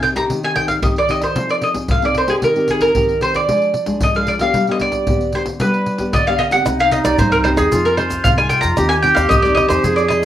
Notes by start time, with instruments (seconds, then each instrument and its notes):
Already playing: nylon-string guitar C3 C4 D#4 G#4
0.03 mandolin G5, pandeiro
0.15 nylon-string guitar C4 D#4 G4, mandolin A#5, pandeiro, surdo
0.29 nylon-string guitar D#3, pandeiro, surdo
0.43 nylon-string guitar C4 D#4 G4, mandolin G#5, pandeiro
0.55 mandolin G5, pandeiro, surdo
0.68 mandolin F5, pandeiro, surdo
0.82 nylon-string guitar D#3 C4 D#4 G4, mandolin D#5, pandeiro, surdo
0.96 mandolin D5, pandeiro
1.08 nylon-string guitar C4 D#4 G4, mandolin D#5, pandeiro
1.22 mandolin C5, pandeiro, surdo
1.35 nylon-string guitar F3 C4 D#4 G#4, pandeiro, surdo
1.49 mandolin D5, pandeiro
1.62 mandolin D#5, pandeiro
1.74 nylon-string guitar C4 D#4 G#4, pandeiro, surdo
1.88 nylon-string guitar C3, mandolin F5, pandeiro, surdo
2.02 nylon-string guitar C4 D#4 G#4, mandolin D5, pandeiro
2.15 mandolin C5, pandeiro
2.27 nylon-string guitar C4 D#4 G4, mandolin G#4, pandeiro, surdo
2.42 nylon-string guitar D#3, mandolin A#4, pandeiro, surdo
2.56 nylon-string guitar C4 D#4 G4, pandeiro
2.68 mandolin G#4, pandeiro, surdo
2.81 mandolin A#4, pandeiro, surdo
2.95 nylon-string guitar D#3 C4 D#4 G4, pandeiro, surdo
3.09 pandeiro
3.21 nylon-string guitar C4 D#4 G4, mandolin C5, pandeiro
3.34 mandolin D5, pandeiro, surdo
3.48 nylon-string guitar F3 G#3 D4 G#4, pandeiro, surdo
3.62 pandeiro
3.74 pandeiro
3.86 nylon-string guitar G#3 D4 G#4, pandeiro, surdo
4.01 nylon-string guitar F3, mandolin D#5, pandeiro, surdo
4.15 nylon-string guitar G#3 D4 G#4, mandolin F5, pandeiro
4.27 mandolin D5, pandeiro
4.40 nylon-string guitar B3 D4 G4, mandolin F5, pandeiro, surdo
4.54 nylon-string guitar G3, pandeiro, surdo
4.67 nylon-string guitar B3 D4 G4, pandeiro
4.71 mandolin D#5
4.79 mandolin D5, pandeiro, surdo
4.92 pandeiro, surdo
5.07 nylon-string guitar D3 B3 D4 G4, pandeiro, surdo
5.20 pandeiro
5.32 nylon-string guitar B3 D4 G4, mandolin C5, pandeiro
5.46 pandeiro, surdo
5.60 nylon-string guitar G3 B3 D4 G4, mandolin B4, pandeiro, surdo
5.74 pandeiro
5.86 pandeiro
5.98 nylon-string guitar B3 D4 G4, pandeiro, surdo
6.13 nylon-string guitar D3, mandolin D5 D#5, pandeiro, surdo
6.26 nylon-string guitar B3 D4 G4, mandolin F5, pandeiro
6.38 mandolin D#5, pandeiro
6.51 nylon-string guitar C4 D#4 G4, mandolin F#5, pandeiro, surdo
6.66 upright bass C2, nylon-string guitar C3, clarinet D#4, pandeiro, tamborim, shaker, surdo
6.79 mandolin F5, pandeiro, shaker
6.91 mandolin D#5, pandeiro
7.05 upright bass C2, nylon-string guitar C4 D#4 G4, mandolin D5, pandeiro, tamborim, shaker, surdo
7.18 upright bass C2, nylon-string guitar G2, mandolin C5, pandeiro, shaker, surdo
7.32 mandolin A#4, pandeiro, shaker
7.44 nylon-string guitar C4 D#4 G4, mandolin C5, pandeiro, tamborim
7.57 upright bass D#2, mandolin G#4, pandeiro, tamborim, shaker, surdo
7.72 upright bass F2, nylon-string guitar F3 C4 D#4 G#4, clarinet F4, pandeiro, shaker, surdo
7.85 nylon-string guitar C4 D#4 G#4, mandolin A#4, pandeiro, shaker
7.97 nylon-string guitar C4 D#4 G#4, mandolin C5, pandeiro, tamborim
8.10 pandeiro, shaker, surdo
8.24 upright bass C2, nylon-string guitar C3, mandolin F5, pandeiro, shaker, surdo
8.38 nylon-string guitar C4 D#4 G#4, mandolin G#5, pandeiro, tamborim, shaker
8.49 mandolin G5, pandeiro, shaker
8.61 upright bass F2, mandolin A#5, pandeiro, shaker, surdo
8.77 upright bass D#2, nylon-string guitar D#3 C4 D#4 G4, clarinet G4, pandeiro, tamborim, shaker, surdo
8.89 mandolin G#5, pandeiro, shaker
9.02 nylon-string guitar C4 D#4 G4, mandolin G5, pandeiro
9.15 upright bass D#2, mandolin F5, pandeiro, tamborim, shaker, surdo
9.29 upright bass D#2, nylon-string guitar D#3, mandolin D#5, pandeiro, shaker, surdo
9.42 nylon-string guitar C4 D#4 G4, mandolin D5, pandeiro, shaker
9.55 mandolin D#5, pandeiro, tamborim
9.68 upright bass E2, nylon-string guitar C4 D#4 G#4, mandolin C5, pandeiro, tamborim, shaker, surdo
9.84 upright bass F2, nylon-string guitar F3, clarinet G#4, pandeiro, shaker, surdo
9.96 mandolin D5, pandeiro, shaker
10.08 nylon-string guitar C4 D#4 G#4, mandolin D#5, pandeiro, tamborim